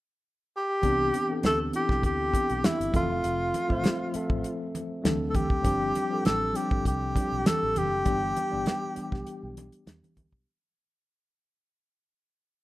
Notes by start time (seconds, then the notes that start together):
0.57 G4
0.82 C2 E3 B3 C4 D4 G4, kick, closed hi-hat
1.14 closed hi-hat, muted conga
1.28 E3 B3 C4 D4 A4
1.43 D2 A4, snare, closed hi-hat, high conga
1.72 E3 B3 C4 D4 E4, closed hi-hat
1.76 G4
1.89 B1, kick, snare
2.03 D2 G4, kick, closed hi-hat
2.32 E3 B3 C4 D4 G4, kick, closed hi-hat, muted conga
2.49 B1, closed hi-hat
2.64 E4, snare, closed hi-hat, high conga
2.80 G1, closed hi-hat
2.92 F1 F3 A3 C4 A4 E5, kick, closed hi-hat, high conga
2.96 F4
3.24 F1, closed hi-hat
3.54 closed hi-hat, muted conga
3.68 A1 F3 A3 C4 C5 E5, kick
3.84 snare, closed hi-hat, high conga
4.12 F3 A3 C4 A4 E5, muted fingered electric bass stroke, closed hi-hat
4.30 A1, kick
4.44 closed hi-hat
4.75 closed hi-hat, muted conga
5.02 D2 F#3 A3 C4 D4 A4, snare, closed hi-hat, high conga
5.30 A4
5.35 G4, kick, closed hi-hat, high conga
5.50 kick
5.63 G1 F3 G3 C4 D4 G4, kick, closed hi-hat
5.95 closed hi-hat, muted conga
6.10 F3 G3 C4 D4 A4
6.25 A1 A4, snare, closed hi-hat, high conga
6.53 F3 G3 C4 D4 G4, closed hi-hat
6.71 G1, kick
6.85 C2 G4, kick, closed hi-hat
7.14 F3 G3 C4 D4 G4, kick, closed hi-hat, muted conga
7.32 B1
7.46 A4, snare, closed hi-hat, high conga
7.63 A1
7.76 F#1 G4, closed hi-hat, high conga
8.05 G1 E3 G3 B3 D4 G4, kick, closed hi-hat
8.36 closed hi-hat, muted conga
8.50 G1 E3 G3 B3 D4 G4
8.66 snare, closed hi-hat, high conga
8.95 E3 G3 B3 D4 G4, muted fingered electric bass stroke, closed hi-hat
9.12 B1, kick, snare
9.27 closed hi-hat
9.43 B1
9.57 closed hi-hat, muted conga
9.72 closed hi-hat
9.87 E2, snare, closed hi-hat, high conga
10.03 closed hi-hat, high conga
10.17 D2, kick, closed hi-hat, high conga
10.33 B1, kick